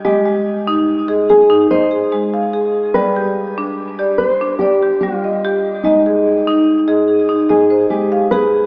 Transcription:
<<
  \new Staff \with { instrumentName = "Marimba" } { \time 7/8 \tempo 4 = 73 << { ees''16 aes8. r16 ees''16 aes'8 ees''16 aes'8 f''8. | d''16 g'8. r16 d''8. d''16 g'8 ees''8. | ees''16 aes'8. r16 ees''16 aes'8 ees''16 c''8 f''8. | } \\ { aes8 r16 ees'8 aes'8 ees'8 r16 aes8 aes'8 | g8 r16 d'8 g'8 d'8 r16 g8 g'8 | r8. ees'8 aes'8 ees'8 r16 aes8 aes'8 | } >> }
  \new Staff \with { instrumentName = "Marimba" } { \clef bass \time 7/8 r2. r8 | r2. r8 | aes2.~ aes8 | }
  \new Staff \with { instrumentName = "Nylon-string guitar" } { \time 7/8 g'4. aes'8 c''4. | b'4. c''8 g'8 f'4 | ees'2 aes'8 g'8 b'8 | }
>>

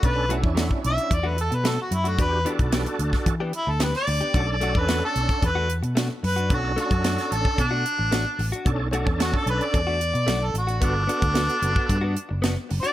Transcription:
<<
  \new Staff \with { instrumentName = "Harmonica" } { \time 4/4 \key b \minor \tempo 4 = 111 b'8 r4 e''8 d''16 b'16 a'16 b'16 a'16 fis'16 e'16 fis'16 | b'8 r2 e'16 a'16 b'16 d''8.~ | d''16 d''8 b'8 a'8. b'8 r4 b'8 | fis'8 fis'4 a'8 d'2 |
r4 fis'16 a'16 b'16 d''4. a'16 fis'8 | d'2. \tuplet 3/2 { r4 d''8 } | }
  \new Staff \with { instrumentName = "Clean electric guitar" } { \time 4/4 \key b \minor r8 <fis a d' fis'>16 r16 <fis a d' fis'>16 r4 <fis a d' fis'>16 r8 <fis a d' fis'>16 r8 <a d' fis'>16 | <e b d' g'>16 r16 <e b d' g'>16 r16 <e b d' g'>16 r4 <e b d' g'>16 r8 <e b d' g'>16 r8 <b d' g'>16 | <a d' fis'>16 r16 <a d' fis'>16 r16 <a d' fis'>16 r4 <a d' fis'>16 r8 <a d' fis'>16 r8 <d' fis'>16 | r8 <a d' fis'>16 r16 <a d' fis'>16 r4 <a d' fis'>16 r8 <a d' fis'>16 r8 <d' fis'>16 |
r8 <a d' fis'>16 r16 <a d' fis'>16 r4 <a d' fis'>16 r8 <a d' fis'>16 r8 <d' fis'>16 | <b d' fis'>16 r16 <b d' fis'>16 r16 <b d' fis'>16 r4 <b d' fis'>16 r8 <b d' fis'>16 r8 <d' fis'>16 | }
  \new Staff \with { instrumentName = "Tonewheel organ" } { \time 4/4 \key b \minor <cis' d' a'>8 <cis' d' e'>4. r2 | <d' fis' g'>8 <d' fis' a'>4. r2 | <cis' d' a'>8 <cis' d' a'>4. r2 | <cis' d' a'>8 <cis' d' a'>4. r2 |
<cis' d' a'>8 <cis' d' a'>4. r2 | <b fis' a'>8 <b fis' a'>4. r2 | }
  \new Staff \with { instrumentName = "Fingered electric bass" } { \clef bass \time 4/4 \key b \minor b,,8. e,8 r16 b,,16 r16 e,8. b,8 r16 fis,8 | e,8 r16 b,,8 r16 d,16 r16 e8 r16 d,8 r16 d,16 r16 | b,,8. e,8 r16 b,,16 r16 e,8. b,8 r16 fis,8 | b,,8 r16 fis,8 r16 a,,16 r16 b,8 r16 a,,8 r16 a,,16 r16 |
b,,8. e,8 r16 b,,16 r16 e,8. b,16 b,,8 a,,8 | g,,8 r16 d,8 r16 fis,,16 r16 g,8 r16 fis,,8 r16 fis,,16 r16 | }
  \new DrumStaff \with { instrumentName = "Drums" } \drummode { \time 4/4 <hh bd>8 hh16 bd16 <hh sn>16 bd16 hh16 hh16 <hh bd>8 hh16 hh16 <hh sn>8 hh16 hh16 | <hh bd>8 hh16 <hh bd>16 <hh sn>16 hh16 hh16 <bd sn>16 <hh bd>8 hh8 <hh sn>16 sn16 hho16 hh16 | <hh bd>8 hh16 bd16 <hh sn>8 hh16 <hh bd>16 <hh bd>8 hh16 hh16 <hh sn>8 hho16 hh16 | <hh bd>8 hh16 <hh bd>16 <hh sn>16 <hh sn>16 hh16 bd16 <hh bd>8 hh8 <hh sn>8 hho16 hh16 |
<hh bd>8 hh16 bd16 <hh sn>16 bd16 hh16 hh16 <hh bd>8 hh16 hh16 <hh sn>8 hh16 hh16 | <hh bd>8 hh16 <hh bd>16 <hh sn>16 hh16 hh16 bd16 <hh bd>8 hh8 <hh sn>8 hho16 hh16 | }
>>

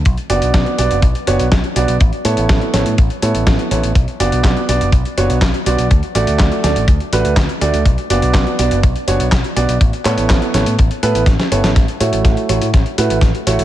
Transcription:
<<
  \new Staff \with { instrumentName = "Grand piano" } { \time 4/4 \key a \mixolydian \tempo 4 = 123 r8 <b d' fis' d''>4 <b d' fis' d''>8 r8 <b d' fis' cis''>8 r8 <b d' fis' d''>8 | r8 <b e' a' cis''>4 <b e' a' cis''>8 r8 <b e' a' cis''>4 <b e' a' cis''>8 | r8 <b d' fis' d''>4 <b d' fis' d''>8 r8 <b d' fis' cis''>8 r8 <b d' fis' d''>8 | r8 <a d' fis' d''>4 <a d' fis' d''>8 r8 <a d' fis' b'>8 r8 <a d' fis' d''>8 |
r8 <b d' fis' d''>4 <b d' fis' d''>8 r8 <b d' fis' cis''>8 r8 <b d' fis' d''>8 | r8 <b e' a' cis''>4 <b e' a' cis''>8 r8 <b e' a' b'>8 r8 <b e' a' cis''>8 | r8 <a e' fis' cis''>4 <a e' fis' cis''>8 r8 <a e' fis' b'>8 r8 <a e' fis' cis''>8 | }
  \new Staff \with { instrumentName = "Picked electric bass" } { \clef bass \time 4/4 \key a \mixolydian b,,16 r16 fis,,16 b,,16 b,,16 r16 b,,16 fis,,16 b,,16 r16 fis,,16 b,,16 b,,16 r16 b,,16 b,,16 | a,,16 r16 a,16 a,,16 a,,16 r16 a,,16 a,16 a,,16 r16 a,16 a,,16 a,,16 r16 a,,16 a,,16 | b,,16 r16 fis,,16 b,,16 b,,16 r16 b,,16 fis,,16 b,,16 r16 fis,,16 b,,16 b,,16 r16 b,,16 b,,16 | d,16 r16 a,,16 d,16 d,16 r16 d,16 a,,16 d,16 r16 a,,16 d,16 d,16 r16 d,16 d,16 |
b,,16 r16 fis,,16 b,,16 b,,16 r16 b,,16 fis,,16 b,,16 r16 fis,,16 b,,16 b,,16 r16 b,,16 b,,16 | a,,16 r16 a,16 a,,16 a,,16 r16 a,,16 a,16 a,,16 r16 a,16 a,,16 a,,16 r16 g,,16 a,,16 | a,,16 r16 a,16 a,,16 a,,16 r16 a,,16 a,16 a,,16 r16 a,16 a,,16 a,,16 r16 a,,16 a,,16 | }
  \new DrumStaff \with { instrumentName = "Drums" } \drummode { \time 4/4 <hh bd>16 hh16 hh16 hh16 <hh bd sn>16 hh16 hh16 hh16 <hh bd>16 hh16 hh16 hh16 <hh bd sn>16 hh16 hh16 hh16 | <hh bd>16 hh16 hh16 hh16 <hh bd sn>16 hh16 <hh sn>16 hh16 <hh bd>16 hh16 hh16 hh16 <hh bd sn>16 hh16 hh16 hh16 | <hh bd>16 hh16 hh16 hh16 <hc hh bd sn>16 hh16 hh16 hh16 <hh bd>16 hh16 hh16 hh16 <hc hh bd sn>16 hh16 hh16 hh16 | <hh bd>16 hh16 hh16 hh16 <hc hh bd sn>16 hh16 <hh sn>16 hh16 <hh bd>16 hh16 hh16 hh16 <hc hh bd sn>16 hh16 hh16 hh16 |
<hh bd>16 hh16 hh16 hh16 <hc hh bd sn>16 hh16 hh16 hh16 <hh bd>16 hh16 hh16 hh16 <hc hh bd sn>16 hh16 hh16 hh16 | <hh bd>16 hh16 <hc hh>16 hh16 <hc hh bd sn>16 hh16 <hh sn>16 hh16 <hh bd>16 hh16 hh16 hh16 <hh bd sn>16 <hh sn>16 hh16 <hh sn>16 | <hh bd sn>16 hh16 hh16 hh16 <hh bd sn>16 hh16 hh16 hh16 <hh bd sn>16 hh16 hh16 hh16 <hh bd sn>16 hh16 hh16 hh16 | }
>>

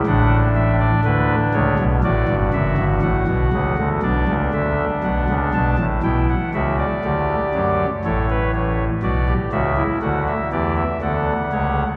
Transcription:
<<
  \new Staff \with { instrumentName = "Pipe organ" } { \time 4/4 \key d \mixolydian \tempo 4 = 60 << { fis''8 e''16 d''16 b'8 cis''8 d''8 e''8 fis''4 | d''8 e''8 fis''8 a''8 g''16 fis''16 e''16 d''4~ d''16 | cis''4 d''8 e''8 fis''16 e''16 d''16 e''16 fis''4 | } \\ { d'2 fis'2 | d'2 e'8 fis'8 g'4 | a'16 b'16 cis''8 fis'16 g'16 fis'16 e'16 fis'8 g'8 a'8 cis''8 | } >> }
  \new Staff \with { instrumentName = "Pipe organ" } { \clef bass \time 4/4 \key d \mixolydian <a,, a,>4 <d, d>8 <cis, cis>16 <b,, b,>16 <a,, a,>16 <g,, g,>16 <fis,, fis,>16 <g,, g,>16 <a,, a,>16 <b,, b,>16 <cis, cis>16 <d, d>16 | <b,, b,>16 <cis, cis>16 <d, d>8 <b,, b,>16 <cis, cis>16 <b,, b,>16 <a,, a,>16 <b,, b,>8 <cis, cis>8 <d, d>8 <fis, fis>8 | <a,, a,>4 <b,, b,>8 <cis, cis>8 <d, d>8 <e, e>8 <d, d>8 <cis, cis>8 | }
>>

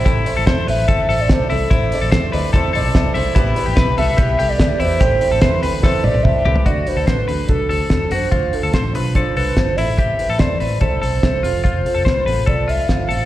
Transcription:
<<
  \new Staff \with { instrumentName = "Soft synth lead" } { \time 4/4 \key d \dorian \tempo 4 = 145 r4. e''4~ e''16 d''16 c''8 a'8~ | a'4. r2 r8 | r4. e''4~ e''16 d''16 d''8 c''8~ | c''4. r4 d''8 e''4 |
d''8 c''8 b'4 a'4 a'8 c''8~ | c''8 a'4 r4 b'8 c''8 e''8~ | e''4 d''4 c''4 c''4 | c''2 d''8 e''8 f''4 | }
  \new Staff \with { instrumentName = "Clean electric guitar" } { \time 4/4 \key d \dorian e'8. a'16 c''8 b'8 a'8 a'4 e'8 | e'8. a'16 c''8 b'8 a'8 a'4 e'8 | e'8. g'16 b'8 a'8 g'8 g'4 e'8 | g'8. a'16 c''8 b'8 a'8 g'4 g'8 |
fis'8. a'16 c''8 b'8 a'8 a'4 fis'8 | f'8. a'16 c''8 b'8 a'8 a'4 e'8 | g'8. a'16 c''8 b'8 a'8 a'4 f'8 | f'8. a'16 c''8 b'8 a'8 f'4 a'8 | }
  \new Staff \with { instrumentName = "Upright piano" } { \time 4/4 \key d \dorian <c' e' a' c''>8 <c' e' a' c''>8 <c' e' a' c''>8 <c' e' a' c''>8 <c' e' a' c''>8 <c' e' a' c''>8 <c' e' a' d''>8 <c' e' a' c''>8 | <c' e' a' c''>8 <c' e' a' d''>8 <c' e' a' c''>8 <c' e' a' d''>8 <c' e' a' c''>8 <c' e' a' d''>8 <c' e' a' d''>8 <c' e' a' c''>8 | <b e' g' b'>8 <b e' g' b'>8 <b e' g' b'>8 <b e' g' b'>8 <b e' g' b'>8 <b e' g' a'>8 <b e' g' a'>8 <b e' g' d''>8 | <c' e' a' c''>8 <c' e' a' c''>8 <c' e' a' b'>8 <c' e' a' b'>8 <c' e' a' c''>8 <c' e' a' d''>8 <c' e' a' c'' a''>8 <c' e' a' b' e''>8 |
<d' fis' a'>8 <d' fis' b'>8 <d' fis' a'>8 <d' fis' a'>8 <d' fis' a'>8 <d' fis' c''>8 <d' fis' c''>8 <d' fis' a'>8 | <d' f' c''>8 <d' f' c''>8 <d' f'>8 <d' f' c''>8 <d' f' c''>8 <d' f' b'>8 <d' f' c''>8 <c' e' a'>8~ | <c' e' a'>8 <c' e' b'>8 <c' e' a'>8 <c' e' c''>8 <c' e' a'>8 <c' e' a'>8 <c' e' a'>8 <c' f' a'>8~ | <c' f' a'>8 <c' f' a'>8 <c' f' b'>8 <c' f' a'>8 <c' f' a'>8 <c' f' a'>8 <c' f' a'>8 <c' f' c''>8 | }
  \new Staff \with { instrumentName = "Fingered electric bass" } { \clef bass \time 4/4 \key d \dorian a,,8 r16 a,,16 e,8 a,,8 g,,8 a,,8 b,,8 c,8 | a,,8 r16 a,,16 e,8 d,8 e,8 b,,8 c,8 c,8 | a,,8 r16 a,,16 b,,8 c,8 b,,8 c,8 d,8 e,8 | a,,8 r16 a,,16 e,8 d,8 e,8 b,,8 c,8 c,8 |
d,8 r16 d,16 a,,8 d,8 c,8 d,8 e,8 fis,8 | d,8 r16 d,16 a,,8 b,,4 c,8 g,,8 a,,8~ | a,,8 r16 a,,16 e,8 a,,8 c,8 b,,8 c,8 f,,8 | f,,8 r16 f,,16 c,8 a,,8 b,,8 c,8 g,,8 a,,8 | }
  \new DrumStaff \with { instrumentName = "Drums" } \drummode { \time 4/4 <hhp bd cymr>8 hho8 <hhp bd cymr sn>8 hho8 <hhp bd cymr>8 hho8 <hhp bd cymr sn>8 hho8 | <hhp bd cymr>8 hho8 <hhp bd cymr sn>8 hho8 <hhp bd cymr>8 hho8 <hhp bd cymr sn>8 hho8 | <hhp bd cymr>8 hho8 <hhp bd cymr sn>8 hho8 <hhp bd cymr>8 hho8 <hhp bd cymr sn>8 hho8 | <hhp bd cymr>8 hho8 <hhp bd cymr sn>8 hho8 <bd sn>8 tommh16 tommh16 <bd toml>8 tomfh16 tomfh16 |
<hh bd>8 hho8 <hh bd sn>8 hho8 <hh bd>8 hho8 <hh bd sn>8 hho8 | <hh bd>8 hho8 <hh bd sn>8 hho8 <hh bd>8 hho8 <bd sn>8 hho8 | <hh bd>8 hho8 <hh bd sn>8 hho8 <hh bd>8 hho8 <hh bd sn>8 hho8 | <hh bd>8 hho8 <hh bd sn>8 hho8 <hh bd>8 hho8 <hh bd sn>8 hho8 | }
>>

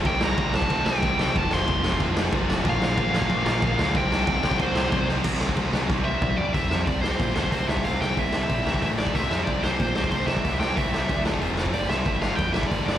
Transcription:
<<
  \new Staff \with { instrumentName = "Lead electric guitar" } { \time 4/4 \key c \mixolydian \tempo 4 = 185 g''8 bes''4 a''4 g''4 g''8 | a''8 c'''2 r4. | f''8 f''4 f''2~ f''8 | g''4 g''4 c''4. r8 |
r2 r8 e''4 d''8 | e''8 e''8 d''8 c''4 c''8 c''8 e''8 | f''8 g''8 e''4. e''8 e''8 d''8 | e''8 e''8 d''8 c''8 c''8 c''8 c''8 e''8~ |
e''8 g''8 e''4. r4. | d''8 e''4 f''8 g''8 e''8 d''8 d''8 | }
  \new Staff \with { instrumentName = "Distorted electric guitar" } { \time 4/4 \key c \mixolydian <c e g c' e'>2~ <c e g c' e'>8 <c e g c' e'>8 <c e g c' e'>4 | <f a c' f'>2~ <f a c' f'>8 <f a c' f'>8 <f a c' f'>4 | <bes, d f bes f'>2~ <bes, d f bes f'>8 <bes, d f bes f'>8 <bes, d f bes f'>4 | <c g c' e'>2~ <c g c' e'>8 <c g c' e'>8 <c g c' e'>4 |
<c g c' e'>2 <c g c' e'>2 | <c g c' e'>4. <c g c' e'>2~ <c g c' e'>8 | <c g c' e'>4. <c g c' e'>4. <a, e a e'>4 | <c g c' e' g'>4. <c g c' e' g'>2~ <c g c' e' g'>8 |
<c g c' e' g'>4. <c g c' e' g'>8 <d a d' a'>4 <f c' f' c''>4 | <g b d' g' b'>4. <g b d' g' b'>2~ <g b d' g' b'>8 | }
  \new Staff \with { instrumentName = "Distorted electric guitar" } { \clef bass \time 4/4 \key c \mixolydian <c g c'>8 <c g c'>8 <c g c'>8 <c g c'>8 <c g c'>8 <c g c'>8 <c g c'>8 <c g c'>8 | <f, c f>8 <f, c f>8 <f, c f>8 <f, c f>8 <f, c f>8 <f, c f>8 <f, c f>8 <f, c f>8 | <bes, f bes>8 <bes, f bes>8 <bes, f bes>8 <bes, f bes>8 <bes, f bes>8 <bes, f bes>8 <bes, f bes>8 <bes, f bes>8 | <c g c'>8 <c g c'>8 <c g c'>8 <c g c'>8 <c g c'>8 <c g c'>8 <c g c'>8 <c g c'>8 |
<c g c'>8 <c g c'>8 <c g c'>8 <c g c'>8 <c g c'>8 <c g c'>8 <c g c'>8 <c g c'>8 | <c g c'>8 <c g c'>8 <c g c'>8 <c g c'>8 <c g c'>8 <c g c'>8 <c g c'>8 <c g c'>8 | <c g c'>8 <c g c'>8 <c g c'>8 <c g c'>8 <c g c'>8 <c g c'>8 <a, e a>8 <a, e a>8 | <c g c'>8 <c g c'>8 <c g c'>8 <c g c'>8 <c g c'>8 <c g c'>8 <c g c'>8 <c g c'>8 |
<c g c'>8 <c g c'>8 <c g c'>8 <c g c'>8 <d a d'>8 <d a d'>8 <f, c f>8 <f, c f>8 | <g, d g>8 <g, d g>8 <g, d g>8 <g, d g>8 <g, d g>8 <g, d g>8 <g, d g>8 <g, d g>8 | }
  \new Staff \with { instrumentName = "Picked electric bass" } { \clef bass \time 4/4 \key c \mixolydian c,8 c,8 c,8 c,8 c,8 c,8 c,8 c,8 | f,,8 f,,8 f,,8 f,,8 f,,8 f,,8 f,,8 f,,8 | bes,,8 bes,,8 bes,,8 bes,,8 bes,,8 bes,,8 bes,,8 d,8 | c,8 c,8 c,8 c,8 c,8 c,8 c,8 c,8 |
c,8 c,8 c,8 c,8 c,4 c,8 c,8 | c,8 f,8 c,4 bes,8 c,8 c,8 c,8 | c,8 c,8 c,8 c,8 bes,,8 c,8 a,,4 | c,8 f,8 c,4 bes,8 c,8 c,8 c,8 |
c,8 c,8 c,8 c,8 d,8 d,8 f,,4 | g,,8 c,8 g,,4 f,8 g,,8 g,,8 g,,8 | }
  \new DrumStaff \with { instrumentName = "Drums" } \drummode { \time 4/4 <cymc bd>8 sn8 <cymc bd>8 sn16 bd16 <cymc bd>8 sn8 <cymc bd>8 sn8 | <cymc bd>8 sn8 <cymc bd>8 sn16 bd16 <cymc bd>8 sn8 <cymc bd>8 sn8 | <cymc bd>8 sn8 <cymc bd>8 sn16 bd16 <cymc bd>8 sn8 <cymc bd>8 sn8 | <cymc bd>8 sn8 <cymc bd>8 sn16 bd16 <cymc bd>8 sn8 <cymc bd>8 sn8 |
<cymc bd>8 sn16 bd16 <bd cymr>8 sn8 <bd sn>4 <bd toml>8 tomfh8 | <hho bd>8 sn8 <hho bd>8 sn8 <hho bd>8 sn16 bd16 <hho bd>8 sn16 bd16 | <hho bd>8 sn8 <hho bd>8 sn8 <hho bd>8 sn16 bd16 <hho bd>8 sn16 bd16 | <hho bd>8 sn8 <hho bd>8 sn8 <hho bd>8 sn16 bd16 <hho bd>8 sn16 bd16 |
<hho bd>8 sn8 <hho bd>8 sn8 <hho bd>8 sn16 bd16 <hho bd>8 sn16 bd16 | <hho bd>8 sn8 <hho bd>8 sn8 <hho bd>8 sn16 bd16 <hho bd>8 sn8 | }
>>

